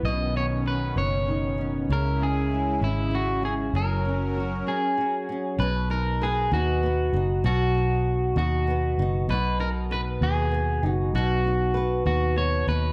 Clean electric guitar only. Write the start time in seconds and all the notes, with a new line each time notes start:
0.05 D#5
0.37 C#5
0.68 B4
0.98 C#5
1.93 A#4
2.23 G#4
2.84 E4
3.15 F#4
3.45 G#4
3.76 A#4
4.68 G#4
5.60 B4
5.91 A#4
6.23 G#4
6.53 F#4
7.46 F#4
8.38 F#4
9.30 B4
9.60 A#4
9.92 B4
10.23 G#4
10.90 F#4
11.16 F#4
12.07 F#4
12.38 C#5
12.69 B4